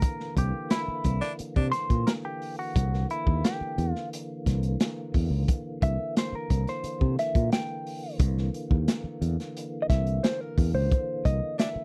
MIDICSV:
0, 0, Header, 1, 7, 480
1, 0, Start_track
1, 0, Tempo, 680272
1, 18, Time_signature, 4, 2, 24, 8
1, 8357, End_track
2, 0, Start_track
2, 0, Title_t, "Clean electric guitar"
2, 0, Program_c, 0, 27
2, 0, Note_on_c, 0, 70, 89
2, 267, Note_off_c, 0, 70, 0
2, 270, Note_on_c, 0, 67, 82
2, 489, Note_off_c, 0, 67, 0
2, 500, Note_on_c, 0, 64, 74
2, 954, Note_off_c, 0, 64, 0
2, 1210, Note_on_c, 0, 72, 100
2, 1459, Note_on_c, 0, 70, 99
2, 1465, Note_off_c, 0, 72, 0
2, 1494, Note_off_c, 0, 70, 0
2, 1587, Note_on_c, 0, 67, 86
2, 1824, Note_off_c, 0, 67, 0
2, 1827, Note_on_c, 0, 66, 88
2, 2161, Note_off_c, 0, 66, 0
2, 2193, Note_on_c, 0, 64, 88
2, 2431, Note_on_c, 0, 67, 80
2, 2436, Note_off_c, 0, 64, 0
2, 2770, Note_off_c, 0, 67, 0
2, 2770, Note_on_c, 0, 65, 80
2, 2881, Note_off_c, 0, 65, 0
2, 4113, Note_on_c, 0, 76, 84
2, 4357, Note_off_c, 0, 76, 0
2, 4363, Note_on_c, 0, 72, 92
2, 4478, Note_off_c, 0, 72, 0
2, 4483, Note_on_c, 0, 70, 80
2, 4720, Note_on_c, 0, 72, 92
2, 4721, Note_off_c, 0, 70, 0
2, 5072, Note_off_c, 0, 72, 0
2, 5074, Note_on_c, 0, 76, 92
2, 5308, Note_off_c, 0, 76, 0
2, 5310, Note_on_c, 0, 79, 106
2, 5759, Note_off_c, 0, 79, 0
2, 6931, Note_on_c, 0, 75, 77
2, 6980, Note_off_c, 0, 75, 0
2, 6983, Note_on_c, 0, 76, 105
2, 7221, Note_on_c, 0, 72, 84
2, 7230, Note_off_c, 0, 76, 0
2, 7342, Note_off_c, 0, 72, 0
2, 7342, Note_on_c, 0, 70, 87
2, 7580, Note_off_c, 0, 70, 0
2, 7582, Note_on_c, 0, 72, 92
2, 7939, Note_on_c, 0, 75, 100
2, 7953, Note_off_c, 0, 72, 0
2, 8163, Note_off_c, 0, 75, 0
2, 8185, Note_on_c, 0, 76, 102
2, 8357, Note_off_c, 0, 76, 0
2, 8357, End_track
3, 0, Start_track
3, 0, Title_t, "Baritone saxophone"
3, 0, Program_c, 1, 67
3, 495, Note_on_c, 1, 64, 78
3, 574, Note_off_c, 1, 64, 0
3, 857, Note_on_c, 1, 62, 113
3, 935, Note_off_c, 1, 62, 0
3, 1102, Note_on_c, 1, 62, 108
3, 1178, Note_off_c, 1, 62, 0
3, 8173, Note_on_c, 1, 62, 82
3, 8252, Note_off_c, 1, 62, 0
3, 8357, End_track
4, 0, Start_track
4, 0, Title_t, "Tonewheel organ"
4, 0, Program_c, 2, 16
4, 0, Note_on_c, 2, 50, 74
4, 0, Note_on_c, 2, 52, 63
4, 0, Note_on_c, 2, 58, 61
4, 8357, Note_off_c, 2, 50, 0
4, 8357, Note_off_c, 2, 52, 0
4, 8357, Note_off_c, 2, 58, 0
4, 8357, End_track
5, 0, Start_track
5, 0, Title_t, "Fingered electric bass"
5, 0, Program_c, 3, 33
5, 261, Note_on_c, 3, 36, 86
5, 360, Note_off_c, 3, 36, 0
5, 741, Note_on_c, 3, 36, 88
5, 841, Note_off_c, 3, 36, 0
5, 1103, Note_on_c, 3, 48, 87
5, 1203, Note_off_c, 3, 48, 0
5, 1339, Note_on_c, 3, 46, 86
5, 1441, Note_off_c, 3, 46, 0
5, 1945, Note_on_c, 3, 36, 105
5, 2145, Note_off_c, 3, 36, 0
5, 2303, Note_on_c, 3, 39, 83
5, 2404, Note_off_c, 3, 39, 0
5, 2668, Note_on_c, 3, 40, 97
5, 2767, Note_off_c, 3, 40, 0
5, 3150, Note_on_c, 3, 36, 91
5, 3348, Note_off_c, 3, 36, 0
5, 3630, Note_on_c, 3, 40, 84
5, 3728, Note_off_c, 3, 40, 0
5, 3740, Note_on_c, 3, 37, 88
5, 3843, Note_off_c, 3, 37, 0
5, 4108, Note_on_c, 3, 36, 92
5, 4207, Note_off_c, 3, 36, 0
5, 4588, Note_on_c, 3, 36, 88
5, 4687, Note_off_c, 3, 36, 0
5, 4948, Note_on_c, 3, 48, 86
5, 5047, Note_off_c, 3, 48, 0
5, 5187, Note_on_c, 3, 46, 86
5, 5286, Note_off_c, 3, 46, 0
5, 5782, Note_on_c, 3, 36, 118
5, 5982, Note_off_c, 3, 36, 0
5, 6142, Note_on_c, 3, 39, 83
5, 6243, Note_off_c, 3, 39, 0
5, 6502, Note_on_c, 3, 40, 90
5, 6602, Note_off_c, 3, 40, 0
5, 6981, Note_on_c, 3, 36, 93
5, 7181, Note_off_c, 3, 36, 0
5, 7462, Note_on_c, 3, 40, 91
5, 7562, Note_off_c, 3, 40, 0
5, 7577, Note_on_c, 3, 37, 100
5, 7679, Note_off_c, 3, 37, 0
5, 7939, Note_on_c, 3, 36, 89
5, 8040, Note_off_c, 3, 36, 0
5, 8357, End_track
6, 0, Start_track
6, 0, Title_t, "Muted fingered electric bass strokes"
6, 622, Note_on_c, 9, 29, 53
6, 692, Note_off_c, 9, 29, 0
6, 987, Note_on_c, 9, 29, 45
6, 1058, Note_off_c, 9, 29, 0
6, 2547, Note_on_c, 9, 29, 53
6, 2617, Note_off_c, 9, 29, 0
6, 4463, Note_on_c, 9, 29, 52
6, 4534, Note_off_c, 9, 29, 0
6, 4824, Note_on_c, 9, 29, 45
6, 4895, Note_off_c, 9, 29, 0
6, 6377, Note_on_c, 9, 29, 55
6, 6448, Note_off_c, 9, 29, 0
6, 8295, Note_on_c, 9, 29, 54
6, 8357, Note_off_c, 9, 29, 0
6, 8357, End_track
7, 0, Start_track
7, 0, Title_t, "Drums"
7, 14, Note_on_c, 9, 42, 88
7, 16, Note_on_c, 9, 36, 125
7, 84, Note_off_c, 9, 42, 0
7, 87, Note_off_c, 9, 36, 0
7, 141, Note_on_c, 9, 38, 34
7, 212, Note_off_c, 9, 38, 0
7, 258, Note_on_c, 9, 36, 94
7, 262, Note_on_c, 9, 42, 65
7, 329, Note_off_c, 9, 36, 0
7, 333, Note_off_c, 9, 42, 0
7, 496, Note_on_c, 9, 42, 92
7, 499, Note_on_c, 9, 38, 106
7, 567, Note_off_c, 9, 42, 0
7, 569, Note_off_c, 9, 38, 0
7, 736, Note_on_c, 9, 42, 78
7, 739, Note_on_c, 9, 36, 77
7, 806, Note_off_c, 9, 42, 0
7, 810, Note_off_c, 9, 36, 0
7, 861, Note_on_c, 9, 42, 39
7, 862, Note_on_c, 9, 38, 32
7, 932, Note_off_c, 9, 38, 0
7, 932, Note_off_c, 9, 42, 0
7, 980, Note_on_c, 9, 42, 83
7, 1051, Note_off_c, 9, 42, 0
7, 1102, Note_on_c, 9, 36, 89
7, 1173, Note_off_c, 9, 36, 0
7, 1221, Note_on_c, 9, 42, 68
7, 1224, Note_on_c, 9, 38, 37
7, 1291, Note_off_c, 9, 42, 0
7, 1294, Note_off_c, 9, 38, 0
7, 1341, Note_on_c, 9, 36, 87
7, 1342, Note_on_c, 9, 42, 46
7, 1412, Note_off_c, 9, 36, 0
7, 1413, Note_off_c, 9, 42, 0
7, 1460, Note_on_c, 9, 42, 84
7, 1464, Note_on_c, 9, 38, 123
7, 1531, Note_off_c, 9, 42, 0
7, 1535, Note_off_c, 9, 38, 0
7, 1706, Note_on_c, 9, 46, 70
7, 1776, Note_off_c, 9, 46, 0
7, 1945, Note_on_c, 9, 36, 119
7, 1948, Note_on_c, 9, 42, 85
7, 2016, Note_off_c, 9, 36, 0
7, 2019, Note_off_c, 9, 42, 0
7, 2073, Note_on_c, 9, 38, 37
7, 2143, Note_off_c, 9, 38, 0
7, 2188, Note_on_c, 9, 42, 59
7, 2259, Note_off_c, 9, 42, 0
7, 2306, Note_on_c, 9, 36, 84
7, 2376, Note_off_c, 9, 36, 0
7, 2431, Note_on_c, 9, 42, 89
7, 2433, Note_on_c, 9, 38, 113
7, 2501, Note_off_c, 9, 42, 0
7, 2503, Note_off_c, 9, 38, 0
7, 2669, Note_on_c, 9, 42, 76
7, 2739, Note_off_c, 9, 42, 0
7, 2791, Note_on_c, 9, 38, 35
7, 2862, Note_off_c, 9, 38, 0
7, 2915, Note_on_c, 9, 42, 84
7, 2986, Note_off_c, 9, 42, 0
7, 3149, Note_on_c, 9, 36, 76
7, 3153, Note_on_c, 9, 42, 69
7, 3156, Note_on_c, 9, 38, 34
7, 3220, Note_off_c, 9, 36, 0
7, 3224, Note_off_c, 9, 42, 0
7, 3227, Note_off_c, 9, 38, 0
7, 3267, Note_on_c, 9, 42, 51
7, 3338, Note_off_c, 9, 42, 0
7, 3388, Note_on_c, 9, 42, 86
7, 3391, Note_on_c, 9, 38, 115
7, 3458, Note_off_c, 9, 42, 0
7, 3462, Note_off_c, 9, 38, 0
7, 3627, Note_on_c, 9, 46, 74
7, 3629, Note_on_c, 9, 36, 84
7, 3697, Note_off_c, 9, 46, 0
7, 3700, Note_off_c, 9, 36, 0
7, 3869, Note_on_c, 9, 36, 117
7, 3870, Note_on_c, 9, 42, 91
7, 3940, Note_off_c, 9, 36, 0
7, 3941, Note_off_c, 9, 42, 0
7, 4108, Note_on_c, 9, 36, 94
7, 4108, Note_on_c, 9, 42, 67
7, 4179, Note_off_c, 9, 36, 0
7, 4179, Note_off_c, 9, 42, 0
7, 4351, Note_on_c, 9, 42, 90
7, 4353, Note_on_c, 9, 38, 108
7, 4421, Note_off_c, 9, 42, 0
7, 4424, Note_off_c, 9, 38, 0
7, 4587, Note_on_c, 9, 42, 73
7, 4589, Note_on_c, 9, 36, 79
7, 4658, Note_off_c, 9, 42, 0
7, 4659, Note_off_c, 9, 36, 0
7, 4709, Note_on_c, 9, 42, 42
7, 4710, Note_on_c, 9, 38, 30
7, 4780, Note_off_c, 9, 38, 0
7, 4780, Note_off_c, 9, 42, 0
7, 4825, Note_on_c, 9, 42, 85
7, 4895, Note_off_c, 9, 42, 0
7, 4947, Note_on_c, 9, 36, 86
7, 5017, Note_off_c, 9, 36, 0
7, 5072, Note_on_c, 9, 42, 77
7, 5075, Note_on_c, 9, 38, 35
7, 5142, Note_off_c, 9, 42, 0
7, 5145, Note_off_c, 9, 38, 0
7, 5187, Note_on_c, 9, 36, 93
7, 5189, Note_on_c, 9, 42, 45
7, 5257, Note_off_c, 9, 36, 0
7, 5260, Note_off_c, 9, 42, 0
7, 5307, Note_on_c, 9, 42, 84
7, 5311, Note_on_c, 9, 38, 125
7, 5377, Note_off_c, 9, 42, 0
7, 5381, Note_off_c, 9, 38, 0
7, 5550, Note_on_c, 9, 46, 73
7, 5621, Note_off_c, 9, 46, 0
7, 5782, Note_on_c, 9, 42, 85
7, 5784, Note_on_c, 9, 36, 126
7, 5852, Note_off_c, 9, 42, 0
7, 5855, Note_off_c, 9, 36, 0
7, 5911, Note_on_c, 9, 38, 38
7, 5982, Note_off_c, 9, 38, 0
7, 6028, Note_on_c, 9, 42, 68
7, 6099, Note_off_c, 9, 42, 0
7, 6144, Note_on_c, 9, 36, 95
7, 6215, Note_off_c, 9, 36, 0
7, 6264, Note_on_c, 9, 42, 96
7, 6267, Note_on_c, 9, 38, 108
7, 6335, Note_off_c, 9, 42, 0
7, 6337, Note_off_c, 9, 38, 0
7, 6505, Note_on_c, 9, 42, 67
7, 6576, Note_off_c, 9, 42, 0
7, 6633, Note_on_c, 9, 38, 33
7, 6633, Note_on_c, 9, 42, 48
7, 6703, Note_off_c, 9, 42, 0
7, 6704, Note_off_c, 9, 38, 0
7, 6750, Note_on_c, 9, 42, 84
7, 6821, Note_off_c, 9, 42, 0
7, 6983, Note_on_c, 9, 36, 82
7, 6987, Note_on_c, 9, 42, 73
7, 6990, Note_on_c, 9, 38, 38
7, 7054, Note_off_c, 9, 36, 0
7, 7058, Note_off_c, 9, 42, 0
7, 7061, Note_off_c, 9, 38, 0
7, 7103, Note_on_c, 9, 42, 43
7, 7174, Note_off_c, 9, 42, 0
7, 7224, Note_on_c, 9, 42, 82
7, 7228, Note_on_c, 9, 38, 119
7, 7295, Note_off_c, 9, 42, 0
7, 7299, Note_off_c, 9, 38, 0
7, 7463, Note_on_c, 9, 36, 96
7, 7465, Note_on_c, 9, 46, 65
7, 7533, Note_off_c, 9, 36, 0
7, 7535, Note_off_c, 9, 46, 0
7, 7702, Note_on_c, 9, 36, 123
7, 7704, Note_on_c, 9, 42, 83
7, 7773, Note_off_c, 9, 36, 0
7, 7775, Note_off_c, 9, 42, 0
7, 7940, Note_on_c, 9, 36, 94
7, 7943, Note_on_c, 9, 42, 70
7, 8010, Note_off_c, 9, 36, 0
7, 8014, Note_off_c, 9, 42, 0
7, 8179, Note_on_c, 9, 42, 89
7, 8181, Note_on_c, 9, 38, 108
7, 8250, Note_off_c, 9, 42, 0
7, 8252, Note_off_c, 9, 38, 0
7, 8357, End_track
0, 0, End_of_file